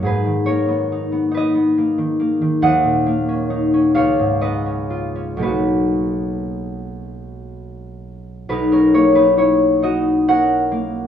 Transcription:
X:1
M:6/8
L:1/16
Q:3/8=45
K:B
V:1 name="Harp"
[GABd]2 [Ac]4 [Bd]6 | [df]6 [c^e]2 [Bd]4 | [FB]12 | [DB] [CA] [Ec] [DB] [Ec]2 [Fd]2 [Af]4 |]
V:2 name="Harp"
[G,,A,D] D, A, B, D B, D B, A, D, A, D, | D,, A,, A, C D C C,, G,, B, C ^E C | [B,,,A,CD]12 | B,,,2 A,2 C2 D2 C2 A,2 |]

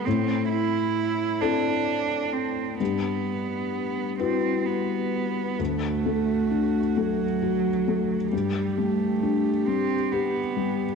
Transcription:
X:1
M:6/8
L:1/8
Q:3/8=44
K:Dmix
V:1 name="Viola"
z6 | z6 | F6 | G6 |]
V:2 name="Cello"
C E2 D2 C | B,3 C B,2 | A,3 F,3 | G, A,2 C B,2 |]
V:3 name="Felt piano"
A,,3 [CEA]3 | G,,3 [EFB]3 | D,, A, D A, F A, | G,, G, D G, G G, |]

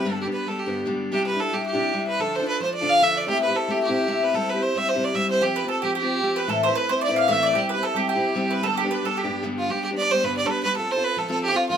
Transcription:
X:1
M:4/4
L:1/16
Q:"Swing" 1/4=224
K:Gmix
V:1 name="Fiddle"
A2 G2 B2 A2 G4 z4 | G2 B2 A2 G2 G6 B2 | A2 c2 B2 c2 d2 f2 e2 d2 | G2 B2 A2 G2 G6 B2 |
A2 B2 c2 e2 c2 d2 e2 c2 | G2 B2 A2 G2 G6 B2 | A2 c2 B2 c2 d2 f2 e2 d2 | G2 B2 A2 G2 G6 B2 |
A2 G2 B2 A2 G4 z2 F2 | G2 G2 d2 c2 B2 d3/2 A/2 B2 B2 | A2 c2 B2 A2 A2 G2 F2 F2 |]
V:2 name="Mandolin"
z16 | z16 | z16 | z16 |
z16 | G2 B2 A2 G2 G6 B2 | A2 c2 B2 c2 d2 f2 e2 d2 | G2 B2 A2 G2 G6 B2 |
A2 G2 B2 A2 G4 z4 | z16 | z16 |]
V:3 name="Steel-string acoustic guitar"
[G,,D,G,B,DG]3 [G,B,DG]3 [G,B,DG]3 [G,,D,G,B,DG]3 [G,,D,G,B,DG]4 | [C,G,DEG]3 [DEG]3 [G,DEG]3 [C,G,DEG]3 [C,G,DEG]4 | [D,F,DFA]3 [DFA]3 [F,DFA]3 [D,F,DFA]3 [D,F,DFA]4 | [C,A,CEG]3 [CEG]3 [A,CEG]3 [C,A,CEG]3 [C,A,CEG]4 |
[C,G,CEG]3 [CEG]3 [G,CEG]3 [C,G,CEG]3 [C,G,CEG]4 | [F,CFG]3 [CFG]3 [F,CFG]3 [F,CFG]3 [F,CFG]4 | [A,,E,A,CEB]3 [A,CEB]3 [A,CEB]3 [A,,E,A,CEB]3 [A,,E,A,CEB]4 | [C,G,CEG]3 [CEG]3 [G,CEG]3 [C,G,CEG]3 [C,G,CEG]4 |
[G,,D,G,B,DG]3 [G,B,DG]3 [G,B,DG]3 [G,,D,G,B,DG]3 [G,,D,G,B,DG]4 | [G,B,DG]3 [G,B,DG]3 [G,B,DG]2 [G,,D,G,B,DG]3 [G,B,DG]3 [G,B,DG]2 | [F,CFA]3 [CFA]3 [F,CFA]2 [F,CFA]3 [CFA]3 [F,CFA]2 |]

